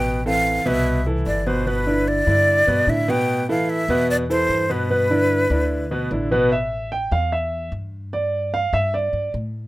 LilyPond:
<<
  \new Staff \with { instrumentName = "Flute" } { \time 4/4 \key a \minor \tempo 4 = 149 g''8 f''4 e''4 r8 d''8 c''8 | b'4 d''2 e''8 g''8~ | g''8 f''8 e''4 d''8 c''4 b'8~ | b'2. r4 |
r1 | r1 | }
  \new Staff \with { instrumentName = "Grand piano" } { \time 4/4 \key a \minor <b, b b'>8 <e c' a'>4 <b, b b'>4 <e e' a'>4 <b, b b'>8 | <b, b b'>8 <d d' e'>4 <d d' e'>4 <b, b b'>8 <d d' e'>8 <b, b b'>8~ | <b, b b'>8 <e e' a'>4 <b, b b'>4 <e e' a'>4 <b, b b'>8 | <b, b b'>8 <d d' e'>4 <d d' e'>4 <b, b b'>8 <d d' e'>8 <b, b b'>8 |
e''4 g''8 f''8 e''4 r4 | d''4 f''8 e''8 d''4 r4 | }
  \new Staff \with { instrumentName = "Upright bass" } { \clef bass \time 4/4 \key a \minor a,,4. c,4. g,,4~ | g,,4. g,4 g,8 a,4~ | a,4. e,4. g,4~ | g,4. d,4. a,,4~ |
a,,4. e,4. g,4~ | g,4. g,4 g,8 a,4 | }
>>